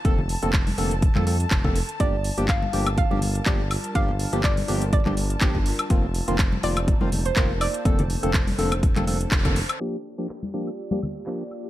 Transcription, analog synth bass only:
X:1
M:4/4
L:1/16
Q:"Swing 16ths" 1/4=123
K:Gm
V:1 name="Analog synth bass" clef=bass
F,,,2 z F,,,2 z F,,,2 z F,,2 z F,,,2 z2 | G,,,2 z G,,,2 z G,,,2 z G,,,2 z G,,,2 z2 | G,,,2 z G,,,2 z G,,,2 z G,,,2 z G,,,2 z2 | F,,,2 z F,,,2 z F,,,2 z F,,,2 z F,,,2 z2 |
F,,,2 z F,,,2 z F,,,2 z F,,,2 z F,,,2 z2 | z16 |]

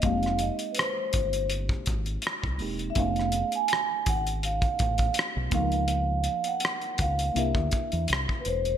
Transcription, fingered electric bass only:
X:1
M:4/4
L:1/16
Q:"Swing 16ths" 1/4=82
K:Db
V:1 name="Fingered electric bass" clef=bass
F,,,3 z3 =G,,,4 A,,,2 z C,, =E,,,2 | F,,,3 z3 ^G,,,4 =A,,,2 z =B,,, D,,2- | D,,3 z3 D,,2 C,, =D,, z =E,, C,, z =E,,,2 |]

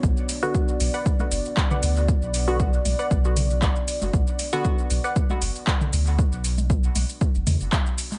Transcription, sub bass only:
X:1
M:4/4
L:1/16
Q:"Swing 16ths" 1/4=117
K:Bm
V:1 name="Sub bass" clef=bass
B,,, z4 z B,,, z3 F,,, z3 D,,2 | z B,,,4 z B,,, z B,,,4 z3 F,,, | B,,, z4 z B,,, z3 F,,, z3 D,,2 | z B,,,4 z B,,, z2 F,,, E,, F,,, z4 |]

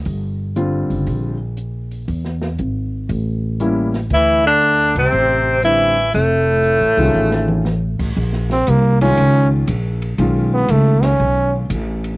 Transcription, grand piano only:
X:1
M:4/4
L:1/8
Q:"Swing" 1/4=118
K:F
V:1 name="Grand piano"
z2 [D,G,CF]3 z3 | z6 [G,B,^CE] z | z6 [D,G,CE] z | z3 [_E,^CF^G]3 z2 |
[K:Bbm] z3 [E,A,DF]3 z2 | [^D,A,^CF]4- [D,A,CF] z3 |]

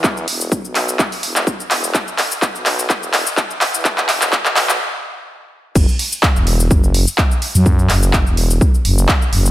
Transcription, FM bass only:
X:1
M:4/4
L:1/16
Q:"Swing 16ths" 1/4=126
K:E
V:1 name="FM bass" clef=bass
E,,2 E,,,3 B,,,3 z2 E,,,2 z2 E,,,2 | z4 z B,,,3 z6 z E,,- | E,,2 E,,,3 B,,,3 z8 | F,,, z4 E,,,3 F,,,3 z4 F,,- |
F,,2 F,,,3 E,,,3 z2 F,,,2 z2 F,,,2 |]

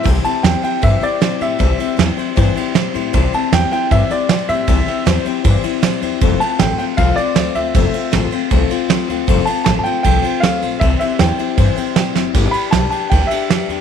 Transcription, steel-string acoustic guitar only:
X:1
M:4/4
L:1/8
Q:1/4=156
K:C
V:1 name="Steel-string acoustic guitar"
[C,E,G,CEc] [G,CEc] [G,CEc] [G,CEc] [C,E,G,CEc] [G,CEc] [G,CEc] [G,CEc] | [C,E,G,CEc] [G,CEc] [G,CEc] [G,CEc] [C,E,G,CEc] [G,CEc] [G,CEc] [G,CEc] | [C,E,G,CEc] [G,CEc] [G,CEc] [G,CEc] [C,E,G,CEc] [G,CEc] [G,CEc] [G,CEc] | [C,E,G,CEc] [G,CEc] [G,CEc] [G,CEc] [C,E,G,CEc] [G,CEc] [G,CEc] [G,CEc] |
[F,A,CFc] [CFc] [A,CFc] [CFc] [F,A,CFc] [CFc] [A,CFc] [CFc] | [F,A,CFc] [CFc] [A,CFc] [CFc] [F,A,CFc] [CFc] [A,CFc] [CFc] | [F,A,CFc] [CFc] [A,CFc] [CFc] [F,A,CFc] [CFc] [A,CFc] [CFc] | [C,E,G,CEc] [G,CEc] [G,CEc] [G,CEc] [C,E,G,CEc] [G,CEc] [G,CEc] [G,CEc] |
[G,DGB] [DGB] [DGB] [DGB] [G,DGB] [DGB] [G,DGB] [DGB] |]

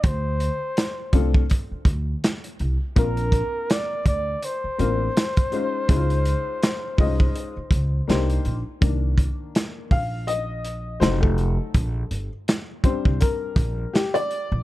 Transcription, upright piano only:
X:1
M:4/4
L:1/16
Q:"Swing 16ths" 1/4=82
K:Cdor
V:1 name="Upright piano"
z6 [A,CDFA]2 z8 | [B,CDFB]6 z4 [B,CDFB]2 z2 [_A,_DEFc]2 | [_A,_DE=EFc]6 [A,D_EFe]2 z4 [B,=DEGc]2 z2 | z6 f2 e4 c A3- |
A3 z3 c2 B4 G d3 |]
V:2 name="Upright piano"
z16 | z16 | z16 | [E,B,D]6 z6 [_G,A,E]4 |
z6 [G,CD]6 z4 |]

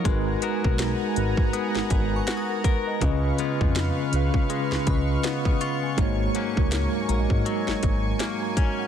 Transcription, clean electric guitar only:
X:1
M:4/4
L:1/8
Q:"Swing 16ths" 1/4=81
K:Abdor
V:1 name="Clean electric guitar"
A, [CGB]3 C2 G B | D, [A,CF]3 A,2 C F | A,, [G,B,D]3 G,2 B, D |]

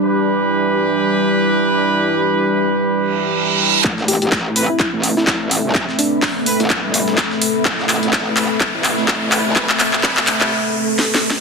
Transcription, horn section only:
X:1
M:4/4
L:1/16
Q:"Swing 16ths" 1/4=126
K:Am
V:1 name="Horn section"
[E,DGB]16- | [E,DGB]16 | z6 [CAB] z8 z | z6 [CAB] z8 z |
z6 [CAB] z6 z [CAB] z | [CAB] z3 [CAB] z8 z3 |]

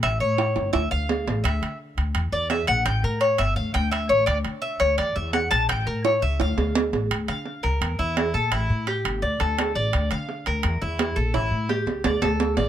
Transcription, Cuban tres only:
X:1
M:4/4
L:1/8
Q:1/4=170
K:Dm
V:1 name="Cuban tres"
e ^c3 e f3 | e2 z3 d e ^f | g B ^c e f g e c | d z e ^c d e ^f a |
g B ^c e f3 z | z f2 B2 E2 A | E2 G2 d A2 d- | d f2 B2 E2 A |
E2 G2 d A2 d |]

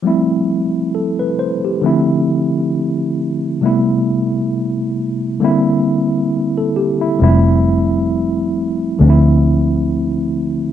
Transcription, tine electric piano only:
X:1
M:4/4
L:1/16
Q:"Swing 16ths" 1/4=67
K:Flyd
V:1 name="Tine electric piano"
z4 A B c G2 z6 z | z12 z A G E- | E z12 z3 |]
V:2 name="Tine electric piano"
[F,G,A,CE]8 [D,F,A,CE]8 | [C,G,A,B,E]8 [D,G,_B,CE]8 | [F,G,^G,A,CE]8 [D,F,A,CDE]8 |]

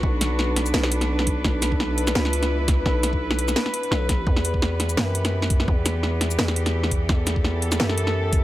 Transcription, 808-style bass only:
X:1
M:4/4
L:1/8
Q:"Swing 16ths" 1/4=170
K:Bm
V:1 name="808-style bass" clef=bass
B,,,4 B,,,4 | B,,,4 C,,4 | B,,,4 z2 B,,,2 | E,,4 F,,4 |
E,,4 E,,4 | E,,4 F,,4 |]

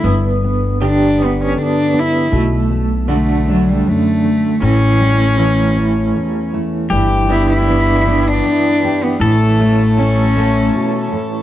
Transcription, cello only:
X:1
M:3/4
L:1/16
Q:1/4=79
K:Glyd
V:1 name="Cello"
z4 D2 B, C D2 E2 | z4 A,2 F, G, A,4 | C8- C2 z2 | z2 E E4 D4 B, |
A,4 C6 z2 |]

